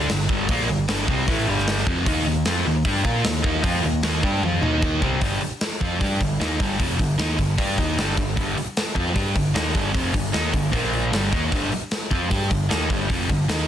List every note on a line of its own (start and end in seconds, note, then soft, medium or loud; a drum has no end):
0.00 0.10 D4 medium
0.00 snare soft
0.09 0.28 G1 medium
0.09 0.26 G2 medium
0.09 0.26 D3 medium
0.09 snare loud
0.09 open hi-hat medium
0.20 snare soft
0.29 0.47 G1 medium
0.29 0.49 G2 loud
0.29 0.49 D3 medium
0.29 0.49 G3 loud
0.29 kick loud
0.49 0.67 A#1 medium
0.49 0.69 A#2 loud
0.49 0.69 F3 loud
0.49 0.69 A#3 loud
0.49 kick loud
0.49 open hi-hat medium
0.69 0.87 G1 medium
0.69 0.85 G2 medium
0.69 0.85 D3 medium
0.88 1.07 G1 medium
0.88 1.07 G2 medium
0.88 1.07 D3 medium
0.88 1.07 G3 loud
0.88 snare loud
0.88 open hi-hat medium
1.07 1.26 C2 medium
1.07 1.27 C3 loud
1.07 1.27 G3 loud
1.07 1.28 C4 loud
1.07 kick loud
1.27 1.46 A1 medium
1.27 1.47 A2 medium
1.27 1.47 E3 medium
1.27 1.47 A3 loud
1.27 kick loud
1.27 open hi-hat medium
1.47 1.84 G1 medium
1.47 1.86 G2 medium
1.47 1.87 D3 medium
1.47 1.87 G3 loud
1.58 snare soft
1.67 snare loud
1.67 open hi-hat medium
1.78 snare soft
1.87 2.05 F1 loud
1.87 2.06 F2 medium
1.87 2.06 C3 loud
1.87 2.06 F3 loud
1.87 kick loud
2.06 2.25 D#2 medium
2.06 2.26 D#3 medium
2.06 2.26 A#3 medium
2.06 2.26 D#4 loud
2.06 kick loud
2.06 open hi-hat medium
2.26 2.44 D#2 medium
2.26 2.42 D#3 medium
2.26 2.43 A#3 medium
2.45 2.64 F2 medium
2.45 2.65 F3 loud
2.45 2.65 C4 loud
2.45 2.66 F4 loud
2.45 snare loud
2.45 open hi-hat medium
2.66 2.84 D#2 medium
2.66 2.82 D#3 medium
2.66 2.82 A#3 medium
2.85 3.03 G2 medium
2.85 3.04 G3 medium
2.85 3.05 D4 loud
2.85 3.05 G4 medium
2.85 kick medium
2.85 open hi-hat medium
3.04 3.23 A#2 medium
3.04 3.24 A#3 medium
3.04 3.24 F4 medium
3.04 3.24 A#4 loud
3.04 kick medium
3.24 3.42 D#2 medium
3.24 3.41 D#3 medium
3.24 3.41 A#3 medium
3.24 snare loud
3.24 open hi-hat medium
3.35 snare soft
3.43 3.62 D#2 loud
3.43 3.62 D#3 loud
3.43 3.63 A#3 loud
3.43 3.63 D#4 medium
3.43 kick loud
3.62 3.82 F2 medium
3.62 3.82 F3 medium
3.62 3.83 C4 loud
3.62 3.83 F4 loud
3.62 kick loud
3.62 open hi-hat medium
3.83 4.02 D#2 medium
3.83 3.99 D#3 medium
3.83 4.00 A#3 medium
4.03 4.22 D#2 medium
4.03 4.22 D#3 medium
4.03 4.22 A#3 medium
4.03 4.23 D#4 medium
4.03 snare loud
4.03 open hi-hat medium
4.23 4.41 G2 medium
4.23 4.42 G3 medium
4.23 4.42 D4 medium
4.23 4.43 G4 loud
4.23 kick medium
4.42 4.61 F2 medium
4.42 4.62 F3 loud
4.42 4.62 C4 medium
4.42 4.62 F4 loud
4.42 high tom medium
4.62 4.99 D#2 medium
4.62 5.01 D#3 medium
4.62 5.01 A#3 medium
4.62 5.02 D#4 medium
4.62 mid tom medium
4.82 kick medium
5.02 5.20 C2 medium
5.02 5.21 C3 medium
5.02 5.21 G3 loud
5.02 5.22 C4 loud
5.02 kick medium
5.21 5.40 G1 medium
5.21 5.41 G2 medium
5.21 5.41 D3 loud
5.21 5.41 G3 loud
5.21 kick medium
5.21 open hi-hat medium
5.41 muted picked electric bass stroke soft
5.41 muted distorted electric guitar stroke medium
5.41 open hi-hat soft
5.61 snare loud
5.61 open hi-hat medium
5.81 5.99 F2 medium
5.81 6.00 F3 medium
5.81 6.00 C4 medium
5.81 6.00 F4 loud
5.81 kick medium
5.81 open hi-hat soft
6.00 6.19 G2 medium
6.00 6.19 G3 loud
6.00 6.20 D4 medium
6.00 6.20 G4 medium
6.00 kick medium
6.00 open hi-hat medium
6.20 6.39 G1 medium
6.20 6.36 G2 medium
6.20 6.36 D3 medium
6.20 kick medium
6.20 open hi-hat soft
6.40 6.58 D#2 medium
6.40 6.59 D#3 medium
6.40 6.59 A#3 medium
6.40 6.60 D#4 medium
6.40 snare loud
6.40 open hi-hat medium
6.60 6.78 G1 medium
6.60 6.79 G2 loud
6.60 6.79 D3 medium
6.60 6.79 G3 loud
6.60 kick medium
6.60 open hi-hat medium
6.79 6.98 F1 medium
6.79 6.98 F2 medium
6.79 6.98 C3 medium
6.79 6.99 F3 loud
6.79 kick loud
6.79 open hi-hat medium
6.99 7.17 G1 medium
6.99 7.15 G2 medium
6.99 7.15 D3 medium
6.99 kick medium
6.99 open hi-hat medium
7.18 7.37 D#2 medium
7.18 7.37 D#3 medium
7.18 7.38 A#3 medium
7.18 7.38 D#4 medium
7.18 snare loud
7.18 open hi-hat medium
7.38 7.57 G1 medium
7.38 7.54 G2 medium
7.38 7.54 D3 medium
7.38 kick medium
7.38 open hi-hat medium
7.57 7.77 G2 medium
7.57 7.77 G3 medium
7.57 7.77 D4 loud
7.57 7.78 G4 medium
7.57 kick medium
7.57 open hi-hat medium
7.78 7.96 D#2 loud
7.78 7.97 D#3 medium
7.78 7.97 A#3 medium
7.78 7.98 D#4 medium
7.78 kick medium
7.78 open hi-hat medium
7.97 8.16 G1 medium
7.97 8.15 G2 medium
7.97 8.15 D3 medium
7.97 8.17 G3 medium
7.97 snare loud
7.97 open hi-hat medium
8.17 8.36 G1 medium
8.17 8.33 G2 medium
8.17 8.33 D3 medium
8.17 kick medium
8.17 open hi-hat soft
8.36 8.55 G1 medium
8.36 8.55 G2 loud
8.36 8.56 D3 loud
8.36 8.56 G3 medium
8.36 kick loud
8.36 open hi-hat medium
8.56 muted distorted electric guitar stroke medium
8.56 muted picked electric bass stroke soft
8.56 open hi-hat soft
8.77 snare loud
8.77 open hi-hat medium
8.95 9.14 F2 medium
8.95 9.15 F3 medium
8.95 9.14 C4 loud
8.95 9.14 F4 loud
8.95 kick medium
9.14 9.34 G2 medium
9.14 9.34 G3 medium
9.14 9.34 D4 loud
9.14 9.35 G4 loud
9.14 kick loud
9.14 open hi-hat medium
9.35 9.54 G1 medium
9.35 9.51 G2 medium
9.35 9.51 D3 medium
9.35 kick medium
9.35 open hi-hat medium
9.54 9.73 D#2 medium
9.54 9.74 D#3 medium
9.54 9.74 A#3 medium
9.54 9.74 D#4 medium
9.54 snare loud
9.54 open hi-hat medium
9.74 9.93 G1 medium
9.74 9.93 G2 loud
9.74 9.94 D3 loud
9.74 9.94 G3 loud
9.74 kick medium
9.74 open hi-hat medium
9.93 10.13 F1 medium
9.93 10.13 F2 medium
9.93 10.13 C3 medium
9.93 10.14 F3 loud
9.93 kick loud
9.93 open hi-hat medium
10.14 10.32 G1 medium
10.14 10.30 G2 medium
10.14 10.30 D3 medium
10.14 kick medium
10.14 open hi-hat medium
10.32 10.52 D#2 medium
10.32 10.52 D#3 medium
10.32 10.52 A#3 medium
10.32 10.53 D#4 medium
10.32 snare loud
10.32 open hi-hat medium
10.53 10.72 G1 medium
10.53 10.69 G2 medium
10.53 10.69 D3 medium
10.53 kick medium
10.53 open hi-hat medium
10.72 11.10 A#1 medium
10.72 11.11 A#2 medium
10.72 11.11 F3 loud
10.72 11.12 A#3 medium
10.72 kick medium
10.72 open hi-hat medium
10.93 open hi-hat soft
11.11 11.31 G1 medium
11.11 11.31 G2 medium
11.11 11.31 D3 medium
11.11 11.32 G3 medium
11.11 snare loud
11.11 open hi-hat medium
11.31 11.51 D#2 medium
11.31 11.51 D#3 medium
11.31 11.51 A#3 medium
11.31 11.52 D#4 medium
11.31 kick medium
11.31 open hi-hat medium
11.51 11.70 G1 medium
11.51 11.70 G2 medium
11.51 11.71 D3 medium
11.51 11.71 G3 medium
11.51 kick medium
11.51 open hi-hat medium
11.71 muted distorted electric guitar stroke medium
11.71 muted picked electric bass stroke soft
11.71 open hi-hat soft
11.91 snare loud
11.91 open hi-hat medium
12.11 12.29 F2 medium
12.11 12.30 F3 medium
12.11 12.29 C4 loud
12.11 12.30 F4 medium
12.11 kick medium
12.11 open hi-hat soft
12.30 12.49 G2 medium
12.30 12.49 G3 loud
12.30 12.50 D4 medium
12.30 12.50 G4 loud
12.30 kick loud
12.30 open hi-hat medium
12.50 12.69 G1 medium
12.50 12.66 G2 medium
12.50 12.66 D3 medium
12.50 kick medium
12.50 open hi-hat soft
12.69 12.89 D#2 medium
12.69 12.89 D#3 medium
12.69 12.89 A#3 medium
12.69 12.89 D#4 medium
12.69 snare medium
12.69 open hi-hat medium
12.89 13.08 G1 medium
12.89 13.09 G2 medium
12.89 13.09 D3 medium
12.89 13.09 G3 loud
12.89 kick medium
12.89 open hi-hat medium
13.09 13.28 F1 medium
13.09 13.28 F2 medium
13.09 13.29 C3 medium
13.09 13.29 F3 loud
13.09 kick medium
13.09 open hi-hat medium
13.29 13.47 G1 medium
13.29 13.45 G2 medium
13.29 13.45 D3 medium
13.29 kick medium
13.29 open hi-hat soft
13.48 13.67 D#2 medium
13.48 13.68 D#3 medium
13.48 13.68 A#3 medium
13.48 13.68 D#4 medium
13.48 snare loud
13.48 open hi-hat medium